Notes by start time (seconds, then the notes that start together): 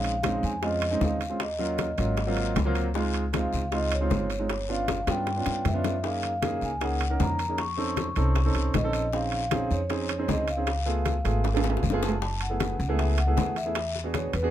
Already playing: A#1 G#3 C4 C#4 D#4
0.04 F5, high conga, high timbale
0.23 G#3 C4 C#4 D#4, high bongo, high conga, high timbale, low timbale, short guiro
0.43 F2 G#5, high conga, short guiro
0.62 G#3 C4 C#4 F4 D#5, high bongo, high conga, high timbale, long guiro
0.82 high conga, high timbale
0.91 G#3 C4 C#4 D#4 D#5
1.01 D#2, high bongo, low bongo, high conga, low timbale, short guiro
1.21 high conga, high timbale, short guiro
1.30 G#3 C4 C#4 F4
1.40 D#5, high bongo, high conga, high timbale, long guiro
1.59 F#3 A#3 C#4 F4, high bongo, high conga
1.78 high bongo, high conga, high timbale, low timbale, short guiro
1.98 G#1 F#3 A#3 C#4 F4, high bongo, high timbale, short guiro
2.17 high bongo, high conga, high timbale, long guiro
2.27 F#3 A#3 C4 F4
2.37 high bongo, high conga, high timbale
2.56 C#2, high bongo, low bongo, high conga, high timbale, low timbale, short guiro
2.65 F#3 A#3 C4 F4
2.75 high timbale, short guiro
2.94 G#3 C4 D#4 F4, high bongo, high conga, long guiro
3.14 high conga, high timbale
3.33 G#3 C4 D#4 F4 F5, high bongo, high conga, high timbale, low timbale, short guiro
3.53 C#2, high conga, short guiro
3.72 G#3 C4 D#4 F4 D#5, high bongo, high conga, high timbale, long guiro
3.92 C#5, high conga, high timbale
4.01 G#3 C4 D#4 F4
4.10 G1, high bongo, low bongo, high conga, low timbale, short guiro
4.30 C#5, high conga, high timbale, short guiro
4.39 G#3 C4 D#4 F4
4.49 high bongo, high conga, high timbale, long guiro
4.69 B3 C#4 D4 F4 F5, high bongo, high conga
4.88 high bongo, high conga, high timbale, low timbale, short guiro
5.07 G2 B3 C#4 D4 F4 G5, high bongo, high timbale, short guiro
5.27 high bongo, high conga, high timbale, long guiro
5.36 B3 C#4 D4 F4
5.46 G2, low bongo, high conga, high timbale
5.65 F#2 E5, low bongo, high conga, high timbale, low timbale, short guiro
5.74 B3 C#4 D4 F4
5.84 low bongo, high timbale, short guiro
6.03 A#3 C#4 D#4 G#4 F5, high bongo, high conga, long guiro
6.23 F5, high conga, high timbale
6.42 A#3 C#4 D#4 G#4, high bongo, high conga, high timbale, low timbale, short guiro
6.61 C#2 G#5, high conga, short guiro
6.81 A#3 C#4 D#4 G#4 F#5, high bongo, high conga, high timbale, long guiro
7.01 high conga, high timbale
7.10 A#3 C#4 D#4 A#4
7.20 F2 A#5, high bongo, low bongo, high conga, low timbale, short guiro
7.39 high conga, high timbale, short guiro
7.49 A#3 C#4 D#4 G#4
7.58 C#6, high bongo, high conga, high timbale, long guiro
7.77 C4 C#4 D#4 A4, high bongo, high conga
7.97 high bongo, high conga, high timbale, low timbale, short guiro
8.16 C2 C4 C#4 D#4 A4, high bongo, high timbale, short guiro
8.35 high bongo, high conga, high timbale, long guiro
8.45 C4 C#4 D#4 A4
8.55 C2, high bongo, high conga, high timbale
8.74 A#1 D#5, high bongo, low bongo, high conga, high timbale, low timbale, short guiro
8.83 C4 C#4 D#4 A4
8.93 high timbale, short guiro
9.13 C4 C#4 D#4 G#4 F5, high bongo, high conga, long guiro
9.32 F5, high conga, high timbale
9.51 C4 C#4 D#4 G#4, high bongo, high conga, high timbale, low timbale, short guiro
9.71 F2 C#5, high conga, short guiro
9.89 C4 C#4 D#4 G#4, high bongo, high conga, high timbale, long guiro
10.09 high conga, high timbale
10.18 C4 C#4 D#4 G#4
10.28 C#2 D#5, high bongo, low bongo, high conga, low timbale, short guiro
10.48 F5, high conga, high timbale, short guiro
10.57 C4 C#4 D#4 G#4
10.67 high bongo, high conga, high timbale, long guiro
10.86 A3 B3 F4 G#4, high bongo, high conga
11.05 high bongo, high conga, high timbale, low timbale, short guiro
11.24 G#1 A3 B3 F4 G#4, high bongo, high timbale, short guiro
11.44 high bongo, high conga, high timbale, long guiro
11.53 A3 B3 F4 G#4, high timbale
11.64 high bongo, high conga
11.70 high timbale
11.77 high bongo
11.83 F#1, high conga, low timbale, short guiro
11.90 A3 B3 F4 G#4, low bongo
12.02 A5, low bongo, short guiro
12.08 low timbale
12.22 A5, high bongo, high conga, long guiro
12.41 F#5, high conga, high timbale
12.50 A3 B3 E4 G#4
12.60 high bongo, high conga, high timbale, low timbale, short guiro
12.79 C#2, high conga, short guiro
12.89 A3 B3 E4 G#4
12.99 E5, high bongo, high conga, high timbale, long guiro
13.18 F#5, high conga, high timbale
13.27 A3 B3 E4 G#4
13.37 E2, high bongo, low bongo, high conga, low timbale, short guiro
13.56 E5, high conga, high timbale, short guiro
13.66 A3 B3 E4 G#4
13.75 high bongo, high conga, high timbale, long guiro
13.95 high bongo, high conga
14.04 B3 D4 F#4 G#4
14.14 C#5, high bongo, high conga, high timbale, low timbale, short guiro
14.33 E2 B4, high bongo, high timbale, short guiro
14.43 B3 D4 F#4 G#4